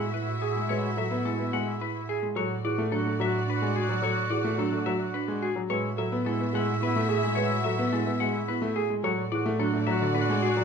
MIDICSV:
0, 0, Header, 1, 7, 480
1, 0, Start_track
1, 0, Tempo, 555556
1, 607, Time_signature, 3, 2, 24, 8
1, 9194, End_track
2, 0, Start_track
2, 0, Title_t, "Clean electric guitar"
2, 0, Program_c, 0, 27
2, 119, Note_on_c, 0, 71, 65
2, 281, Note_off_c, 0, 71, 0
2, 360, Note_on_c, 0, 68, 63
2, 521, Note_off_c, 0, 68, 0
2, 598, Note_on_c, 0, 73, 90
2, 760, Note_off_c, 0, 73, 0
2, 848, Note_on_c, 0, 76, 67
2, 1004, Note_off_c, 0, 76, 0
2, 1083, Note_on_c, 0, 69, 70
2, 1242, Note_off_c, 0, 69, 0
2, 1324, Note_on_c, 0, 78, 78
2, 1482, Note_off_c, 0, 78, 0
2, 1567, Note_on_c, 0, 71, 77
2, 1724, Note_off_c, 0, 71, 0
2, 1807, Note_on_c, 0, 68, 71
2, 1963, Note_off_c, 0, 68, 0
2, 2043, Note_on_c, 0, 73, 91
2, 2202, Note_off_c, 0, 73, 0
2, 2287, Note_on_c, 0, 74, 75
2, 2443, Note_off_c, 0, 74, 0
2, 2524, Note_on_c, 0, 69, 75
2, 2682, Note_off_c, 0, 69, 0
2, 2775, Note_on_c, 0, 76, 90
2, 2926, Note_off_c, 0, 76, 0
2, 3021, Note_on_c, 0, 71, 75
2, 3168, Note_off_c, 0, 71, 0
2, 3246, Note_on_c, 0, 68, 73
2, 3403, Note_off_c, 0, 68, 0
2, 3487, Note_on_c, 0, 73, 100
2, 3643, Note_off_c, 0, 73, 0
2, 3719, Note_on_c, 0, 74, 73
2, 3881, Note_off_c, 0, 74, 0
2, 3966, Note_on_c, 0, 69, 78
2, 4123, Note_off_c, 0, 69, 0
2, 4198, Note_on_c, 0, 76, 88
2, 4360, Note_off_c, 0, 76, 0
2, 4441, Note_on_c, 0, 71, 77
2, 4601, Note_off_c, 0, 71, 0
2, 4687, Note_on_c, 0, 68, 75
2, 4843, Note_off_c, 0, 68, 0
2, 4924, Note_on_c, 0, 73, 99
2, 5082, Note_off_c, 0, 73, 0
2, 5168, Note_on_c, 0, 76, 75
2, 5324, Note_off_c, 0, 76, 0
2, 5411, Note_on_c, 0, 69, 78
2, 5565, Note_off_c, 0, 69, 0
2, 5660, Note_on_c, 0, 78, 92
2, 5808, Note_off_c, 0, 78, 0
2, 5900, Note_on_c, 0, 71, 80
2, 6048, Note_off_c, 0, 71, 0
2, 6125, Note_on_c, 0, 68, 76
2, 6283, Note_off_c, 0, 68, 0
2, 6353, Note_on_c, 0, 73, 102
2, 6518, Note_off_c, 0, 73, 0
2, 6602, Note_on_c, 0, 76, 81
2, 6761, Note_off_c, 0, 76, 0
2, 6848, Note_on_c, 0, 69, 82
2, 7004, Note_off_c, 0, 69, 0
2, 7086, Note_on_c, 0, 78, 93
2, 7243, Note_off_c, 0, 78, 0
2, 7330, Note_on_c, 0, 71, 89
2, 7485, Note_off_c, 0, 71, 0
2, 7566, Note_on_c, 0, 68, 77
2, 7723, Note_off_c, 0, 68, 0
2, 7812, Note_on_c, 0, 73, 96
2, 7965, Note_off_c, 0, 73, 0
2, 8050, Note_on_c, 0, 74, 81
2, 8204, Note_off_c, 0, 74, 0
2, 8291, Note_on_c, 0, 69, 86
2, 8445, Note_off_c, 0, 69, 0
2, 8524, Note_on_c, 0, 76, 91
2, 8682, Note_off_c, 0, 76, 0
2, 8765, Note_on_c, 0, 71, 89
2, 8923, Note_off_c, 0, 71, 0
2, 9007, Note_on_c, 0, 68, 76
2, 9163, Note_off_c, 0, 68, 0
2, 9194, End_track
3, 0, Start_track
3, 0, Title_t, "String section"
3, 0, Program_c, 1, 48
3, 0, Note_on_c, 1, 66, 74
3, 0, Note_on_c, 1, 76, 71
3, 1889, Note_off_c, 1, 76, 0
3, 1890, Note_off_c, 1, 66, 0
3, 2040, Note_on_c, 1, 66, 83
3, 2042, Note_on_c, 1, 74, 81
3, 4769, Note_off_c, 1, 66, 0
3, 4770, Note_off_c, 1, 74, 0
3, 4916, Note_on_c, 1, 76, 92
3, 4918, Note_on_c, 1, 66, 89
3, 7647, Note_off_c, 1, 76, 0
3, 7648, Note_off_c, 1, 66, 0
3, 7798, Note_on_c, 1, 66, 90
3, 7801, Note_on_c, 1, 74, 87
3, 9194, Note_off_c, 1, 66, 0
3, 9194, Note_off_c, 1, 74, 0
3, 9194, End_track
4, 0, Start_track
4, 0, Title_t, "Marimba"
4, 0, Program_c, 2, 12
4, 126, Note_on_c, 2, 64, 66
4, 283, Note_off_c, 2, 64, 0
4, 363, Note_on_c, 2, 68, 81
4, 522, Note_off_c, 2, 68, 0
4, 603, Note_on_c, 2, 71, 67
4, 762, Note_off_c, 2, 71, 0
4, 843, Note_on_c, 2, 69, 73
4, 1002, Note_off_c, 2, 69, 0
4, 1082, Note_on_c, 2, 64, 83
4, 1242, Note_off_c, 2, 64, 0
4, 1325, Note_on_c, 2, 68, 71
4, 1483, Note_off_c, 2, 68, 0
4, 1567, Note_on_c, 2, 64, 71
4, 1723, Note_off_c, 2, 64, 0
4, 1806, Note_on_c, 2, 68, 87
4, 1963, Note_off_c, 2, 68, 0
4, 2045, Note_on_c, 2, 69, 71
4, 2203, Note_off_c, 2, 69, 0
4, 2287, Note_on_c, 2, 68, 72
4, 2443, Note_off_c, 2, 68, 0
4, 2523, Note_on_c, 2, 62, 88
4, 2682, Note_off_c, 2, 62, 0
4, 2763, Note_on_c, 2, 66, 77
4, 2922, Note_off_c, 2, 66, 0
4, 3002, Note_on_c, 2, 62, 75
4, 3162, Note_off_c, 2, 62, 0
4, 3242, Note_on_c, 2, 66, 88
4, 3402, Note_off_c, 2, 66, 0
4, 3482, Note_on_c, 2, 69, 77
4, 3642, Note_off_c, 2, 69, 0
4, 3725, Note_on_c, 2, 68, 75
4, 3883, Note_off_c, 2, 68, 0
4, 3962, Note_on_c, 2, 62, 94
4, 4122, Note_off_c, 2, 62, 0
4, 4202, Note_on_c, 2, 66, 75
4, 4362, Note_off_c, 2, 66, 0
4, 4443, Note_on_c, 2, 62, 77
4, 4602, Note_off_c, 2, 62, 0
4, 4683, Note_on_c, 2, 66, 94
4, 4842, Note_off_c, 2, 66, 0
4, 4922, Note_on_c, 2, 71, 76
4, 5082, Note_off_c, 2, 71, 0
4, 5161, Note_on_c, 2, 69, 78
4, 5321, Note_off_c, 2, 69, 0
4, 5399, Note_on_c, 2, 64, 98
4, 5561, Note_off_c, 2, 64, 0
4, 5643, Note_on_c, 2, 68, 88
4, 5802, Note_off_c, 2, 68, 0
4, 5882, Note_on_c, 2, 64, 82
4, 6041, Note_off_c, 2, 64, 0
4, 6125, Note_on_c, 2, 68, 103
4, 6283, Note_off_c, 2, 68, 0
4, 6367, Note_on_c, 2, 71, 83
4, 6523, Note_off_c, 2, 71, 0
4, 6609, Note_on_c, 2, 69, 81
4, 6764, Note_off_c, 2, 69, 0
4, 6847, Note_on_c, 2, 64, 96
4, 7003, Note_off_c, 2, 64, 0
4, 7089, Note_on_c, 2, 68, 83
4, 7244, Note_off_c, 2, 68, 0
4, 7327, Note_on_c, 2, 64, 81
4, 7483, Note_off_c, 2, 64, 0
4, 7566, Note_on_c, 2, 68, 98
4, 7723, Note_off_c, 2, 68, 0
4, 7806, Note_on_c, 2, 69, 74
4, 7963, Note_off_c, 2, 69, 0
4, 8050, Note_on_c, 2, 68, 75
4, 8204, Note_off_c, 2, 68, 0
4, 8289, Note_on_c, 2, 62, 104
4, 8444, Note_off_c, 2, 62, 0
4, 8528, Note_on_c, 2, 66, 81
4, 8684, Note_off_c, 2, 66, 0
4, 8766, Note_on_c, 2, 62, 78
4, 8923, Note_off_c, 2, 62, 0
4, 9008, Note_on_c, 2, 66, 97
4, 9164, Note_off_c, 2, 66, 0
4, 9194, End_track
5, 0, Start_track
5, 0, Title_t, "Oboe"
5, 0, Program_c, 3, 68
5, 0, Note_on_c, 3, 64, 75
5, 99, Note_off_c, 3, 64, 0
5, 186, Note_on_c, 3, 64, 75
5, 356, Note_off_c, 3, 64, 0
5, 434, Note_on_c, 3, 64, 82
5, 605, Note_off_c, 3, 64, 0
5, 674, Note_on_c, 3, 64, 76
5, 849, Note_off_c, 3, 64, 0
5, 931, Note_on_c, 3, 64, 74
5, 1104, Note_off_c, 3, 64, 0
5, 1176, Note_on_c, 3, 64, 66
5, 1351, Note_off_c, 3, 64, 0
5, 1431, Note_on_c, 3, 64, 59
5, 1605, Note_off_c, 3, 64, 0
5, 1682, Note_on_c, 3, 64, 43
5, 1856, Note_off_c, 3, 64, 0
5, 2044, Note_on_c, 3, 66, 47
5, 2221, Note_off_c, 3, 66, 0
5, 2295, Note_on_c, 3, 66, 57
5, 2472, Note_off_c, 3, 66, 0
5, 2545, Note_on_c, 3, 66, 76
5, 2722, Note_off_c, 3, 66, 0
5, 2803, Note_on_c, 3, 66, 84
5, 2978, Note_off_c, 3, 66, 0
5, 3052, Note_on_c, 3, 66, 88
5, 3227, Note_off_c, 3, 66, 0
5, 3300, Note_on_c, 3, 66, 86
5, 3476, Note_off_c, 3, 66, 0
5, 3550, Note_on_c, 3, 66, 92
5, 3727, Note_off_c, 3, 66, 0
5, 3803, Note_on_c, 3, 66, 78
5, 3979, Note_off_c, 3, 66, 0
5, 4057, Note_on_c, 3, 66, 70
5, 4232, Note_off_c, 3, 66, 0
5, 4312, Note_on_c, 3, 66, 64
5, 4485, Note_off_c, 3, 66, 0
5, 4570, Note_on_c, 3, 66, 45
5, 4741, Note_off_c, 3, 66, 0
5, 4931, Note_on_c, 3, 64, 50
5, 5106, Note_off_c, 3, 64, 0
5, 5188, Note_on_c, 3, 64, 59
5, 5360, Note_off_c, 3, 64, 0
5, 5432, Note_on_c, 3, 64, 74
5, 5607, Note_off_c, 3, 64, 0
5, 5686, Note_on_c, 3, 64, 91
5, 5859, Note_off_c, 3, 64, 0
5, 5933, Note_on_c, 3, 64, 92
5, 6108, Note_off_c, 3, 64, 0
5, 6181, Note_on_c, 3, 64, 91
5, 6357, Note_off_c, 3, 64, 0
5, 6442, Note_on_c, 3, 64, 100
5, 6614, Note_off_c, 3, 64, 0
5, 6688, Note_on_c, 3, 64, 88
5, 6862, Note_off_c, 3, 64, 0
5, 6936, Note_on_c, 3, 64, 72
5, 7111, Note_off_c, 3, 64, 0
5, 7187, Note_on_c, 3, 64, 66
5, 7362, Note_off_c, 3, 64, 0
5, 7438, Note_on_c, 3, 64, 52
5, 7613, Note_off_c, 3, 64, 0
5, 7810, Note_on_c, 3, 66, 52
5, 7985, Note_off_c, 3, 66, 0
5, 8066, Note_on_c, 3, 66, 66
5, 8239, Note_off_c, 3, 66, 0
5, 8316, Note_on_c, 3, 66, 78
5, 8489, Note_off_c, 3, 66, 0
5, 8558, Note_on_c, 3, 66, 96
5, 8735, Note_off_c, 3, 66, 0
5, 8806, Note_on_c, 3, 66, 92
5, 8984, Note_off_c, 3, 66, 0
5, 9073, Note_on_c, 3, 66, 91
5, 9194, Note_off_c, 3, 66, 0
5, 9194, End_track
6, 0, Start_track
6, 0, Title_t, "Grand piano"
6, 0, Program_c, 4, 0
6, 483, Note_on_c, 4, 56, 64
6, 590, Note_off_c, 4, 56, 0
6, 603, Note_on_c, 4, 56, 84
6, 762, Note_off_c, 4, 56, 0
6, 839, Note_on_c, 4, 54, 67
6, 960, Note_on_c, 4, 59, 94
6, 1001, Note_off_c, 4, 54, 0
6, 1082, Note_on_c, 4, 56, 62
6, 1121, Note_off_c, 4, 59, 0
6, 1201, Note_on_c, 4, 59, 71
6, 1242, Note_off_c, 4, 56, 0
6, 1326, Note_on_c, 4, 56, 88
6, 1361, Note_off_c, 4, 59, 0
6, 1483, Note_off_c, 4, 56, 0
6, 1922, Note_on_c, 4, 56, 70
6, 2038, Note_on_c, 4, 54, 87
6, 2082, Note_off_c, 4, 56, 0
6, 2200, Note_off_c, 4, 54, 0
6, 2285, Note_on_c, 4, 52, 76
6, 2404, Note_on_c, 4, 57, 95
6, 2443, Note_off_c, 4, 52, 0
6, 2523, Note_on_c, 4, 54, 68
6, 2562, Note_off_c, 4, 57, 0
6, 2644, Note_on_c, 4, 57, 69
6, 2682, Note_off_c, 4, 54, 0
6, 2764, Note_on_c, 4, 54, 86
6, 2802, Note_off_c, 4, 57, 0
6, 2922, Note_off_c, 4, 54, 0
6, 3127, Note_on_c, 4, 56, 85
6, 3283, Note_off_c, 4, 56, 0
6, 3363, Note_on_c, 4, 54, 78
6, 3464, Note_off_c, 4, 54, 0
6, 3477, Note_on_c, 4, 54, 92
6, 3640, Note_off_c, 4, 54, 0
6, 3716, Note_on_c, 4, 52, 78
6, 3840, Note_on_c, 4, 57, 92
6, 3880, Note_off_c, 4, 52, 0
6, 3960, Note_on_c, 4, 54, 77
6, 4001, Note_off_c, 4, 57, 0
6, 4078, Note_on_c, 4, 57, 74
6, 4121, Note_off_c, 4, 54, 0
6, 4202, Note_on_c, 4, 54, 90
6, 4240, Note_off_c, 4, 57, 0
6, 4362, Note_off_c, 4, 54, 0
6, 4562, Note_on_c, 4, 56, 90
6, 4722, Note_off_c, 4, 56, 0
6, 4801, Note_on_c, 4, 54, 73
6, 4925, Note_on_c, 4, 56, 89
6, 4961, Note_off_c, 4, 54, 0
6, 5083, Note_off_c, 4, 56, 0
6, 5169, Note_on_c, 4, 54, 75
6, 5289, Note_on_c, 4, 59, 98
6, 5324, Note_off_c, 4, 54, 0
6, 5409, Note_on_c, 4, 56, 75
6, 5444, Note_off_c, 4, 59, 0
6, 5531, Note_on_c, 4, 59, 81
6, 5564, Note_off_c, 4, 56, 0
6, 5652, Note_on_c, 4, 56, 97
6, 5685, Note_off_c, 4, 59, 0
6, 5805, Note_off_c, 4, 56, 0
6, 5895, Note_on_c, 4, 59, 80
6, 6015, Note_on_c, 4, 57, 99
6, 6046, Note_off_c, 4, 59, 0
6, 6166, Note_off_c, 4, 57, 0
6, 6253, Note_on_c, 4, 56, 78
6, 6361, Note_off_c, 4, 56, 0
6, 6374, Note_on_c, 4, 56, 90
6, 6526, Note_off_c, 4, 56, 0
6, 6608, Note_on_c, 4, 54, 78
6, 6729, Note_on_c, 4, 59, 101
6, 6764, Note_off_c, 4, 54, 0
6, 6851, Note_on_c, 4, 56, 79
6, 6884, Note_off_c, 4, 59, 0
6, 6967, Note_on_c, 4, 59, 80
6, 7005, Note_off_c, 4, 56, 0
6, 7087, Note_on_c, 4, 56, 90
6, 7123, Note_off_c, 4, 59, 0
6, 7244, Note_off_c, 4, 56, 0
6, 7329, Note_on_c, 4, 59, 72
6, 7445, Note_on_c, 4, 57, 94
6, 7484, Note_off_c, 4, 59, 0
6, 7603, Note_off_c, 4, 57, 0
6, 7691, Note_on_c, 4, 56, 76
6, 7808, Note_on_c, 4, 54, 92
6, 7845, Note_off_c, 4, 56, 0
6, 7964, Note_off_c, 4, 54, 0
6, 8051, Note_on_c, 4, 52, 84
6, 8170, Note_on_c, 4, 57, 105
6, 8205, Note_off_c, 4, 52, 0
6, 8289, Note_on_c, 4, 54, 78
6, 8325, Note_off_c, 4, 57, 0
6, 8410, Note_on_c, 4, 57, 82
6, 8444, Note_off_c, 4, 54, 0
6, 8531, Note_on_c, 4, 54, 91
6, 8564, Note_off_c, 4, 57, 0
6, 8655, Note_on_c, 4, 50, 85
6, 8685, Note_off_c, 4, 54, 0
6, 8773, Note_on_c, 4, 57, 74
6, 8806, Note_off_c, 4, 50, 0
6, 8895, Note_on_c, 4, 56, 98
6, 8926, Note_off_c, 4, 57, 0
6, 9046, Note_off_c, 4, 56, 0
6, 9131, Note_on_c, 4, 54, 82
6, 9194, Note_off_c, 4, 54, 0
6, 9194, End_track
7, 0, Start_track
7, 0, Title_t, "Double bass"
7, 0, Program_c, 5, 43
7, 0, Note_on_c, 5, 45, 67
7, 1917, Note_off_c, 5, 45, 0
7, 2045, Note_on_c, 5, 45, 72
7, 4796, Note_off_c, 5, 45, 0
7, 4924, Note_on_c, 5, 45, 77
7, 7675, Note_off_c, 5, 45, 0
7, 7812, Note_on_c, 5, 45, 79
7, 9194, Note_off_c, 5, 45, 0
7, 9194, End_track
0, 0, End_of_file